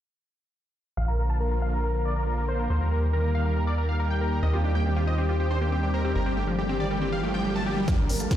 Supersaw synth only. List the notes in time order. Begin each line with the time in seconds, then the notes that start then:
0.97 F5
1.08 A#4
1.19 A#4
1.30 A5
1.40 A#4
1.51 A#4
1.62 F5
1.73 A#4
1.84 A#4
1.95 A#4
2.05 D5
2.16 A#4
2.27 A#4
2.38 A#4
2.48 C5
2.59 A#4
2.70 C5
2.81 A#4
2.91 A#4
3.13 A#4
3.24 A#4
3.35 F5
3.46 A#4
3.56 A#4
3.67 D5
3.78 A#4
3.89 F5
4.00 A#4
4.10 G5
4.21 A#4
4.32 A#4
4.43 D#5
4.54 G4
4.64 G4
4.75 G5
4.86 G4
4.97 G4
5.07 D#5
5.18 G4
5.29 G4
5.40 G4
5.51 C5
5.61 G4
5.72 G4
5.83 G4
5.94 A#4
6.05 G4
6.15 A#4
6.26 G4
6.37 G4
6.59 G4
6.69 G4
6.80 D5
6.91 G4
7.02 G4
7.12 F5
7.23 G4
7.34 G5
7.45 G4
7.56 A5
7.66 G4
7.77 G4
7.88 D5 F5
7.99 A#4
8.09 A#4
8.20 F5 A5
8.31 A#4